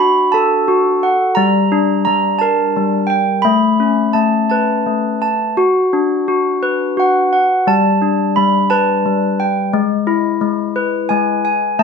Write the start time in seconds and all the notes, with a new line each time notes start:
Already playing: D4 B5
0.00 F#4
0.32 A4 A5
0.68 F#4
1.03 F#5
1.35 G3 A#5
1.72 D4
2.05 G3 A#5
2.39 A#4 A5
2.76 G3
3.07 G5
3.42 A3 B5
3.80 C#4
4.13 A3 A5
4.50 B4 A5
4.87 A3
5.22 A5
5.57 F#4
5.93 D4
6.28 F#4
6.63 B4
6.97 F#4 F#5
7.33 F#5
7.67 G3 A5
8.02 D4
8.36 G3 B5
8.70 B4 A5
9.06 G3
9.40 G5
9.73 G#3
10.07 E4
10.41 G#3
10.76 B4
11.09 G#3 G#5
11.45 G#5
11.79 A3 A5